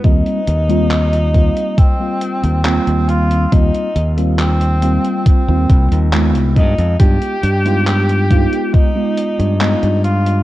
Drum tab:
HH |xxxxxxxxx-xxxxxx|xxxxxxxxx-xxxxxx|xxxxxxxxx-xxxxxx|
CP |----x-------x---|----x-------x---|----x-------x---|
BD |o-----o-o-------|o-------o-o---o-|o-----o-o-------|